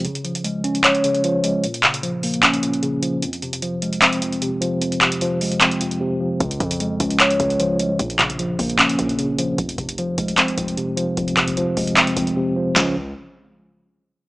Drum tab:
HH |xxxxx-xxxxxxx-x-|xxxxx-oxxxxxx-x-|xxxxx-xxxxxxx-x-|xxxxx-oxxxxx----|
CP |--------x-------|--x-----x-------|--------x-------|--x-----x-------|
SD |----------------|----------------|----------------|----------------|
BD |----------------|----------------|----------------|----------------|

HH |xxxxx-xxxxxxx-x-|xxxxx-oxxxxxx-x-|xxxxx-xxxxxxx-x-|xxxxx-oxxxxx----|
CP |--------x-------|--x-----x-------|--------x-------|--x-----x-------|
SD |----------------|----------------|----------------|----------------|
BD |o-o---o---o-----|o-oo--o---o-----|o-o---o---o-----|o-oo--o---o-----|

HH |----------------|
CP |x---------------|
SD |o---------------|
BD |o---------------|